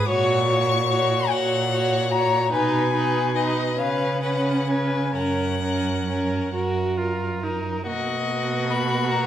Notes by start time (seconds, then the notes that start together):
0.08 A#2 F#4 C#5 C#6
0.47 F#4 C#5
0.88 F#4 C#5
1.29 A#2 F#4 C#5 F#5
1.70 F#4 C#5
2.11 F#4 C#5 A#5
2.52 B2 D#4 B4 G#5
2.93 D#4 B4
3.35 D#4 B4 D#5
3.77 C#3 C#4 B4 F5
4.22 C#4 B4 F#5
4.67 C#4 B4 G#5
5.14 F#2 C#4 A#4 F#5
5.63 C#4 A#4
6.09 C#4 A#4
6.53 F#2 F#4 A#4
6.97 F4 A#4
7.43 D#4 A#4
7.86 B2 A#3 F#4 D#5
8.71 B5
9.11 A#5